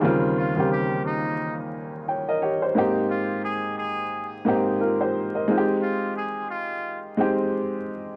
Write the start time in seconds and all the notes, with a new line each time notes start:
Already playing: D#4 G#4
0.01 D#2 C#3 G3 A#3 C4 F4
0.37 F4
0.56 D#2 C#3 G3 A#3 C4 G4
0.72 G4
1.06 D#4
2.08 C#5 G5
2.28 A#4 D#5
2.42 G4 C#5
2.62 G4 C5
2.75 G#2 A#3 C4 D#4 G4
3.10 F4
3.45 G#4
3.78 G#4
4.45 G#2 A#3 C4 D#4 G4
4.81 F4 A#4
5.01 G4 C5
5.35 A#4 D#5
5.48 G#3 C4 D#4 F4
5.58 G4
5.83 F4
6.17 G#4
6.50 F4
7.17 G#3 C4 D#4 G4